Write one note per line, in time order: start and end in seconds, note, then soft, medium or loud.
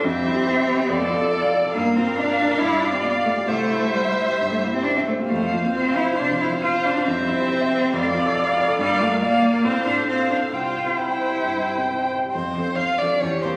0.03 0.87 F2 medium
0.03 1.53 C4 medium
0.03 0.90 G4 medium
0.03 0.88 E5 medium
0.15 0.32 G3 medium
0.25 0.42 E4 medium
0.36 0.53 G4 medium
0.46 0.64 C5 medium
0.56 0.74 E5 medium
0.68 0.85 C5 medium
0.77 0.89 G4 medium
0.89 1.72 F2 medium
0.89 1.74 A4 medium
0.89 1.73 D5 medium
0.99 1.17 A3 medium
1.10 1.27 F4 medium
1.21 1.39 A4 medium
1.32 1.49 D5 medium
1.42 1.59 F5 medium
1.53 1.70 D5 medium
1.64 1.75 A4 medium
1.74 2.58 G2 medium
1.74 1.97 A#3 loud
1.74 2.61 A#4 medium
1.74 3.50 F5 medium
1.86 2.03 A#3 medium
1.96 2.18 C4 medium
1.96 2.14 F4 medium
2.07 2.24 A#4 medium
2.17 2.60 D4 loud
2.17 2.36 D5 medium
2.29 2.46 F5 medium
2.41 2.57 D5 medium
2.50 2.60 A#4 medium
2.59 3.46 G2 medium
2.59 2.82 E4 loud
2.59 3.49 D5 medium
2.71 2.88 G3 medium
2.80 2.91 D4 medium
2.80 3.00 F4 medium
2.92 2.96 C4 medium
2.92 3.10 G4 medium
3.02 3.10 B3 loud
3.02 3.21 D5 medium
3.15 3.33 F5 medium
3.24 3.32 A3 medium
3.24 3.44 D5 medium
3.36 3.48 G4 medium
3.47 4.36 C2 medium
3.47 3.95 A3 loud
3.47 5.09 C5 medium
3.47 5.09 E5 medium
3.60 3.78 G3 medium
3.70 3.88 E4 medium
3.83 4.00 G4 soft
3.93 4.50 G3 medium
3.93 4.11 C5 medium
4.05 4.23 E5 medium
4.17 4.34 C5 medium
4.29 4.46 G4 medium
4.41 4.58 G2 soft
4.50 4.68 G3 soft
4.50 4.55 A3 medium
4.62 4.66 A#3 medium
4.62 4.80 E4 medium
4.73 4.85 C4 medium
4.73 4.92 G4 medium
4.83 4.98 D4 medium
4.83 5.03 C5 medium
4.97 5.07 C4 medium
4.97 5.15 E5 medium
5.07 5.12 A3 medium
5.07 5.26 C5 medium
5.18 5.31 A#3 medium
5.18 5.31 G4 medium
5.29 6.17 F2 medium
5.29 5.54 A3 medium
5.29 5.71 C5 medium
5.29 5.71 F5 medium
5.42 5.59 F3 soft
5.52 5.74 A#3 medium
5.52 5.71 F4 soft
5.66 5.82 C4 medium
5.74 5.98 C4 medium
5.74 6.60 C5 medium
5.74 5.93 C5 medium
5.74 6.61 F5 medium
5.88 6.04 F5 medium
5.97 6.18 E4 medium
5.97 6.16 C5 medium
6.10 6.27 F4 medium
6.18 6.37 C3 soft
6.18 6.40 D4 medium
6.31 6.48 F3 soft
6.41 6.49 E4 medium
6.41 6.59 F4 soft
6.53 6.70 C4 medium
6.62 6.86 F4 medium
6.62 7.05 C5 medium
6.62 6.81 C5 medium
6.62 7.08 F5 medium
6.75 6.92 F5 medium
6.85 7.09 D4 medium
6.85 7.02 C5 medium
6.97 7.07 F4 medium
7.06 7.92 F2 medium
7.06 8.59 C4 loud
7.06 7.92 C5 medium
7.06 7.94 E5 medium
7.18 7.35 G3 medium
7.27 7.45 E4 medium
7.40 7.57 G4 medium
7.51 7.68 C5 medium
7.61 7.78 E5 medium
7.73 7.90 C5 medium
7.82 7.93 G4 medium
7.93 8.77 F2 medium
7.93 8.78 D5 medium
7.93 8.78 F5 medium
8.04 8.21 A3 medium
8.14 8.32 F4 medium
8.25 8.43 A4 medium
8.35 8.53 D5 medium
8.47 8.64 F5 medium
8.58 8.75 D5 medium
8.68 8.79 A4 medium
8.79 9.62 G2 medium
8.79 9.02 G3 loud
8.79 9.19 D5 medium
8.79 9.19 F5 medium
8.89 9.07 A#3 medium
9.00 9.22 A3 loud
9.00 9.17 F4 medium
9.11 9.28 A#4 medium
9.22 9.66 A#3 loud
9.22 9.66 D5 medium
9.22 9.39 D5 medium
9.22 9.65 F5 medium
9.32 9.50 F5 medium
9.43 9.60 D5 medium
9.54 9.65 A#4 medium
9.64 10.50 A2 medium
9.64 9.85 C4 loud
9.64 10.08 C5 medium
9.64 10.08 F5 medium
9.75 9.93 A3 medium
9.86 10.07 D4 loud
9.86 10.04 F4 medium
9.97 10.15 A4 medium
10.07 10.29 C4 loud
10.07 10.52 C5 medium
10.07 10.27 C5 medium
10.07 10.55 F5 medium
10.20 10.37 F5 medium
10.30 10.38 D4 medium
10.30 10.48 C5 medium
10.41 10.52 A4 medium
10.52 11.40 C2 medium
10.52 10.98 F4 medium
10.52 10.97 C5 medium
10.52 10.96 G5 medium
10.63 10.81 G3 soft
10.75 10.93 G4 soft
10.86 11.04 C4 medium
10.97 12.10 E4 medium
10.97 11.16 C5 medium
10.97 12.11 C5 medium
10.97 12.10 G5 medium
11.09 11.27 G5 medium
11.20 11.38 C5 soft
11.31 11.49 G4 soft
11.43 11.61 G2 soft
11.56 11.73 G3 soft
11.66 11.84 G4 soft
11.77 11.95 C4 soft
11.90 12.07 C5 soft
12.01 12.18 G5 soft
12.12 12.29 C5 soft
12.24 12.34 G4 soft
12.32 12.56 F2 soft
12.32 12.78 C4 medium
12.32 12.77 C5 medium
12.57 12.96 F3 soft
12.57 12.97 C4 soft
12.57 12.97 A4 soft
12.76 12.99 F4 medium
12.76 13.00 F5 medium
12.99 13.20 F3 soft
12.99 13.20 C4 soft
12.99 13.20 D4 medium
12.99 13.21 A4 soft
12.99 13.21 D5 medium
13.20 13.43 E2 medium
13.20 13.29 C#4 soft
13.20 13.57 G4 medium
13.20 13.41 C#5 medium
13.42 13.57 G3 soft
13.42 13.57 A#3 soft
13.42 13.57 C4 medium
13.42 13.57 A#4 soft
13.42 13.50 C5 medium